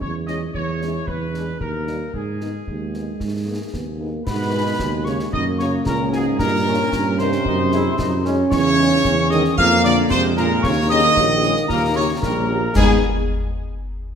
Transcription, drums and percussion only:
0.01 concert bass drum
0.28 snare
0.55 concert bass drum
0.82 snare
1.08 concert bass drum
1.34 snare
1.61 concert bass drum
1.87 snare
2.14 concert bass drum
2.41 snare
2.67 concert bass drum
2.94 snare
3.20 concert bass drum, snare
3.74 concert bass drum, snare
4.27 concert bass drum, snare, crash
4.79 concert bass drum, snare
5.06 snare
5.20 snare
5.33 concert bass drum
5.60 snare
5.86 concert bass drum, snare
6.13 snare
6.39 concert bass drum, snare
6.92 concert bass drum, snare
7.19 snare
7.32 snare
7.45 concert bass drum
7.72 snare
7.99 concert bass drum, snare
8.25 snare
8.52 concert bass drum, snare, crash
9.05 concert bass drum, snare
9.31 snare
9.45 snare
9.58 concert bass drum
9.85 snare
10.11 concert bass drum, snare
10.37 snare
10.64 concert bass drum, snare
11.17 concert bass drum, snare
11.43 snare
11.57 snare
11.70 concert bass drum, snare
12.23 concert bass drum, snare
12.75 concert bass drum, snare, crash

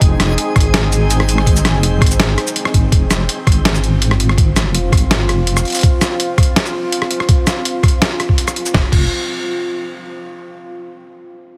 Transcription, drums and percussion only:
0.01 kick, closed hi-hat
0.20 cross-stick, snare, closed hi-hat
0.38 closed hi-hat
0.56 kick, cross-stick, closed hi-hat
0.60 closed hi-hat
0.74 snare, closed hi-hat
0.92 closed hi-hat, shaker
1.10 closed hi-hat, shaker
1.20 cross-stick
1.29 closed hi-hat, shaker
1.38 cross-stick
1.47 kick, closed hi-hat
1.56 shaker
1.65 cross-stick, snare, closed hi-hat
1.83 closed hi-hat
2.01 kick, cross-stick, closed hi-hat
2.06 closed hi-hat
2.11 shaker
2.20 snare, closed hi-hat
2.38 cross-stick, closed hi-hat
2.47 shaker
2.56 closed hi-hat
2.65 cross-stick
2.74 kick, closed hi-hat
2.92 kick, closed hi-hat
3.11 cross-stick, snare, closed hi-hat, shaker
3.29 closed hi-hat
3.47 kick, cross-stick, closed hi-hat
3.52 closed hi-hat
3.65 snare, closed hi-hat
3.75 shaker
3.84 closed hi-hat
4.02 closed hi-hat
4.11 cross-stick
4.20 closed hi-hat
4.29 cross-stick
4.38 kick, closed hi-hat
4.56 cross-stick, snare, closed hi-hat, shaker
4.75 closed hi-hat
4.92 kick, cross-stick, closed hi-hat
4.97 closed hi-hat
5.11 snare, closed hi-hat
5.29 cross-stick, closed hi-hat
5.47 closed hi-hat
5.57 cross-stick, shaker
5.65 closed hi-hat
5.68 closed hi-hat
5.70 closed hi-hat
5.72 closed hi-hat
5.75 closed hi-hat, shaker
5.77 closed hi-hat
5.79 closed hi-hat
5.81 kick, closed hi-hat
5.83 closed hi-hat
6.01 cross-stick, snare, closed hi-hat, shaker
6.20 closed hi-hat
6.38 kick, cross-stick, closed hi-hat
6.43 closed hi-hat
6.56 snare, closed hi-hat
6.66 shaker
6.92 closed hi-hat
7.02 cross-stick
7.11 closed hi-hat
7.20 cross-stick
7.29 kick, closed hi-hat
7.47 cross-stick, snare, closed hi-hat, shaker
7.65 closed hi-hat
7.83 kick, cross-stick, closed hi-hat
7.88 closed hi-hat
8.02 snare, closed hi-hat
8.20 cross-stick, closed hi-hat
8.29 kick
8.38 closed hi-hat
8.48 cross-stick, shaker
8.56 closed hi-hat
8.66 shaker
8.74 kick, snare
8.92 kick, crash

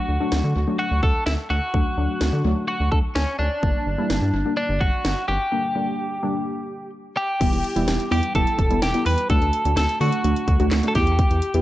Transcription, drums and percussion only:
0.32 snare
1.03 kick
1.27 snare
1.74 kick
2.21 snare
2.92 kick
3.16 snare
3.63 kick
4.10 snare
4.81 kick
5.05 snare
7.41 kick, closed hi-hat, crash
7.53 closed hi-hat
7.64 closed hi-hat
7.76 closed hi-hat
7.88 snare, closed hi-hat
8.00 closed hi-hat
8.12 open hi-hat
8.23 closed hi-hat
8.35 kick, closed hi-hat
8.47 closed hi-hat
8.59 kick, closed hi-hat
8.71 closed hi-hat
8.82 snare, closed hi-hat
8.94 closed hi-hat
9.06 open hi-hat
9.18 closed hi-hat
9.30 kick, closed hi-hat
9.42 closed hi-hat
9.53 closed hi-hat
9.65 closed hi-hat
9.77 snare, closed hi-hat
9.89 closed hi-hat
10.01 open hi-hat
10.12 closed hi-hat
10.24 closed hi-hat
10.36 closed hi-hat
10.48 kick, closed hi-hat
10.60 closed hi-hat
10.71 snare, clap, closed hi-hat
10.83 closed hi-hat
10.95 kick, open hi-hat
11.07 closed hi-hat
11.19 kick, closed hi-hat
11.31 closed hi-hat
11.42 closed hi-hat
11.54 closed hi-hat

